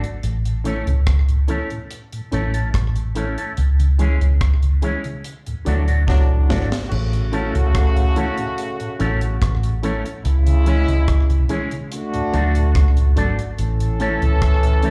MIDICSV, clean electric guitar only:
0, 0, Header, 1, 3, 480
1, 0, Start_track
1, 0, Key_signature, 3, "major"
1, 0, Tempo, 834492
1, 135, Time_signature, 4, 2, 24, 8
1, 8573, End_track
2, 0, Start_track
2, 0, Title_t, "Clean electric guitar"
2, 0, Program_c, 0, 27
2, 376, Note_on_c, 0, 57, 77
2, 380, Note_on_c, 0, 61, 84
2, 381, Note_on_c, 0, 64, 78
2, 384, Note_on_c, 0, 69, 85
2, 488, Note_off_c, 0, 57, 0
2, 489, Note_off_c, 0, 61, 0
2, 490, Note_off_c, 0, 64, 0
2, 491, Note_off_c, 0, 69, 0
2, 854, Note_on_c, 0, 57, 75
2, 859, Note_on_c, 0, 61, 76
2, 861, Note_on_c, 0, 64, 73
2, 863, Note_on_c, 0, 69, 70
2, 967, Note_off_c, 0, 57, 0
2, 969, Note_off_c, 0, 61, 0
2, 970, Note_off_c, 0, 64, 0
2, 971, Note_off_c, 0, 69, 0
2, 1337, Note_on_c, 0, 57, 87
2, 1340, Note_on_c, 0, 61, 82
2, 1343, Note_on_c, 0, 64, 90
2, 1346, Note_on_c, 0, 69, 95
2, 1448, Note_off_c, 0, 57, 0
2, 1450, Note_off_c, 0, 61, 0
2, 1452, Note_off_c, 0, 64, 0
2, 1453, Note_off_c, 0, 69, 0
2, 1462, Note_on_c, 0, 69, 54
2, 1466, Note_on_c, 0, 64, 50
2, 1467, Note_on_c, 0, 61, 49
2, 1470, Note_on_c, 0, 57, 48
2, 1542, Note_off_c, 0, 69, 0
2, 1544, Note_off_c, 0, 64, 0
2, 1545, Note_off_c, 0, 61, 0
2, 1546, Note_off_c, 0, 57, 0
2, 1817, Note_on_c, 0, 57, 71
2, 1820, Note_on_c, 0, 61, 76
2, 1823, Note_on_c, 0, 64, 79
2, 1824, Note_on_c, 0, 69, 79
2, 1929, Note_off_c, 0, 57, 0
2, 1930, Note_off_c, 0, 61, 0
2, 1932, Note_off_c, 0, 64, 0
2, 1932, Note_off_c, 0, 69, 0
2, 1946, Note_on_c, 0, 69, 65
2, 1948, Note_on_c, 0, 64, 59
2, 1951, Note_on_c, 0, 61, 61
2, 1953, Note_on_c, 0, 57, 51
2, 2024, Note_off_c, 0, 69, 0
2, 2025, Note_off_c, 0, 64, 0
2, 2027, Note_off_c, 0, 61, 0
2, 2028, Note_off_c, 0, 57, 0
2, 2300, Note_on_c, 0, 56, 69
2, 2302, Note_on_c, 0, 61, 69
2, 2305, Note_on_c, 0, 64, 78
2, 2308, Note_on_c, 0, 68, 84
2, 2410, Note_off_c, 0, 56, 0
2, 2411, Note_off_c, 0, 61, 0
2, 2413, Note_off_c, 0, 64, 0
2, 2414, Note_off_c, 0, 68, 0
2, 2778, Note_on_c, 0, 56, 71
2, 2782, Note_on_c, 0, 61, 72
2, 2783, Note_on_c, 0, 64, 72
2, 2786, Note_on_c, 0, 68, 69
2, 2889, Note_off_c, 0, 56, 0
2, 2891, Note_off_c, 0, 61, 0
2, 2892, Note_off_c, 0, 64, 0
2, 2893, Note_off_c, 0, 68, 0
2, 3257, Note_on_c, 0, 54, 79
2, 3259, Note_on_c, 0, 57, 83
2, 3262, Note_on_c, 0, 62, 88
2, 3265, Note_on_c, 0, 66, 83
2, 3369, Note_off_c, 0, 54, 0
2, 3370, Note_off_c, 0, 57, 0
2, 3371, Note_off_c, 0, 62, 0
2, 3373, Note_off_c, 0, 66, 0
2, 3383, Note_on_c, 0, 66, 67
2, 3387, Note_on_c, 0, 62, 52
2, 3389, Note_on_c, 0, 57, 58
2, 3391, Note_on_c, 0, 54, 51
2, 3463, Note_off_c, 0, 66, 0
2, 3465, Note_off_c, 0, 62, 0
2, 3466, Note_off_c, 0, 57, 0
2, 3467, Note_off_c, 0, 54, 0
2, 3738, Note_on_c, 0, 54, 65
2, 3742, Note_on_c, 0, 57, 79
2, 3744, Note_on_c, 0, 62, 72
2, 3746, Note_on_c, 0, 66, 79
2, 3849, Note_off_c, 0, 54, 0
2, 3851, Note_off_c, 0, 57, 0
2, 3853, Note_off_c, 0, 62, 0
2, 3854, Note_off_c, 0, 66, 0
2, 4214, Note_on_c, 0, 57, 87
2, 4215, Note_on_c, 0, 61, 88
2, 4218, Note_on_c, 0, 64, 90
2, 4220, Note_on_c, 0, 69, 82
2, 4327, Note_off_c, 0, 57, 0
2, 4328, Note_off_c, 0, 61, 0
2, 4329, Note_off_c, 0, 64, 0
2, 4330, Note_off_c, 0, 69, 0
2, 4695, Note_on_c, 0, 57, 76
2, 4699, Note_on_c, 0, 61, 77
2, 4703, Note_on_c, 0, 64, 79
2, 4704, Note_on_c, 0, 69, 97
2, 4808, Note_off_c, 0, 57, 0
2, 4810, Note_off_c, 0, 61, 0
2, 4811, Note_off_c, 0, 64, 0
2, 4812, Note_off_c, 0, 69, 0
2, 5175, Note_on_c, 0, 57, 84
2, 5178, Note_on_c, 0, 61, 86
2, 5181, Note_on_c, 0, 64, 82
2, 5184, Note_on_c, 0, 69, 87
2, 5288, Note_off_c, 0, 57, 0
2, 5289, Note_off_c, 0, 61, 0
2, 5291, Note_off_c, 0, 64, 0
2, 5292, Note_off_c, 0, 69, 0
2, 5656, Note_on_c, 0, 57, 84
2, 5660, Note_on_c, 0, 61, 82
2, 5662, Note_on_c, 0, 64, 86
2, 5664, Note_on_c, 0, 69, 93
2, 5768, Note_off_c, 0, 57, 0
2, 5770, Note_off_c, 0, 61, 0
2, 5771, Note_off_c, 0, 64, 0
2, 5772, Note_off_c, 0, 69, 0
2, 6135, Note_on_c, 0, 56, 76
2, 6138, Note_on_c, 0, 61, 79
2, 6140, Note_on_c, 0, 64, 87
2, 6142, Note_on_c, 0, 68, 83
2, 6247, Note_off_c, 0, 56, 0
2, 6249, Note_off_c, 0, 61, 0
2, 6250, Note_off_c, 0, 64, 0
2, 6251, Note_off_c, 0, 68, 0
2, 6612, Note_on_c, 0, 56, 76
2, 6616, Note_on_c, 0, 61, 73
2, 6617, Note_on_c, 0, 64, 87
2, 6621, Note_on_c, 0, 68, 84
2, 6726, Note_off_c, 0, 56, 0
2, 6728, Note_off_c, 0, 61, 0
2, 6728, Note_off_c, 0, 64, 0
2, 6730, Note_off_c, 0, 68, 0
2, 7093, Note_on_c, 0, 57, 75
2, 7096, Note_on_c, 0, 62, 82
2, 7098, Note_on_c, 0, 66, 80
2, 7101, Note_on_c, 0, 69, 92
2, 7206, Note_off_c, 0, 57, 0
2, 7207, Note_off_c, 0, 62, 0
2, 7209, Note_off_c, 0, 66, 0
2, 7210, Note_off_c, 0, 69, 0
2, 7573, Note_on_c, 0, 57, 78
2, 7577, Note_on_c, 0, 62, 78
2, 7578, Note_on_c, 0, 66, 94
2, 7581, Note_on_c, 0, 69, 98
2, 7686, Note_off_c, 0, 57, 0
2, 7688, Note_off_c, 0, 62, 0
2, 7689, Note_off_c, 0, 66, 0
2, 7690, Note_off_c, 0, 69, 0
2, 8053, Note_on_c, 0, 57, 87
2, 8057, Note_on_c, 0, 61, 90
2, 8060, Note_on_c, 0, 64, 91
2, 8062, Note_on_c, 0, 69, 100
2, 8166, Note_off_c, 0, 57, 0
2, 8168, Note_off_c, 0, 61, 0
2, 8169, Note_off_c, 0, 64, 0
2, 8170, Note_off_c, 0, 69, 0
2, 8534, Note_on_c, 0, 57, 80
2, 8536, Note_on_c, 0, 61, 72
2, 8540, Note_on_c, 0, 64, 80
2, 8542, Note_on_c, 0, 69, 83
2, 8573, Note_off_c, 0, 57, 0
2, 8573, Note_off_c, 0, 61, 0
2, 8573, Note_off_c, 0, 64, 0
2, 8573, Note_off_c, 0, 69, 0
2, 8573, End_track
3, 0, Start_track
3, 0, Title_t, "Muted clean electric guitar strokes"
3, 21, Note_on_c, 9, 29, 46
3, 78, Note_off_c, 9, 29, 0
3, 3861, Note_on_c, 9, 29, 46
3, 3919, Note_off_c, 9, 29, 0
3, 5063, Note_on_c, 9, 29, 49
3, 5120, Note_off_c, 9, 29, 0
3, 5781, Note_on_c, 9, 29, 58
3, 5839, Note_off_c, 9, 29, 0
3, 6980, Note_on_c, 9, 29, 43
3, 7037, Note_off_c, 9, 29, 0
3, 7700, Note_on_c, 9, 29, 49
3, 7757, Note_off_c, 9, 29, 0
3, 8573, End_track
0, 0, End_of_file